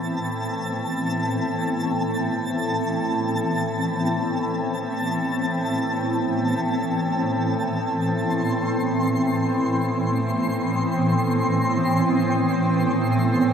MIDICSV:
0, 0, Header, 1, 4, 480
1, 0, Start_track
1, 0, Key_signature, 0, "minor"
1, 0, Tempo, 500000
1, 12993, End_track
2, 0, Start_track
2, 0, Title_t, "Synth texture"
2, 0, Program_c, 0, 99
2, 0, Note_on_c, 0, 81, 66
2, 7431, Note_on_c, 0, 84, 76
2, 7463, Note_off_c, 0, 81, 0
2, 12993, Note_off_c, 0, 84, 0
2, 12993, End_track
3, 0, Start_track
3, 0, Title_t, "Synth drone"
3, 0, Program_c, 1, 95
3, 0, Note_on_c, 1, 57, 67
3, 0, Note_on_c, 1, 64, 69
3, 12993, Note_off_c, 1, 57, 0
3, 12993, Note_off_c, 1, 64, 0
3, 12993, End_track
4, 0, Start_track
4, 0, Title_t, "Ambient pad"
4, 0, Program_c, 2, 92
4, 0, Note_on_c, 2, 45, 67
4, 0, Note_on_c, 2, 52, 79
4, 0, Note_on_c, 2, 59, 65
4, 0, Note_on_c, 2, 60, 67
4, 0, Note_on_c, 2, 79, 68
4, 12993, Note_off_c, 2, 45, 0
4, 12993, Note_off_c, 2, 52, 0
4, 12993, Note_off_c, 2, 59, 0
4, 12993, Note_off_c, 2, 60, 0
4, 12993, Note_off_c, 2, 79, 0
4, 12993, End_track
0, 0, End_of_file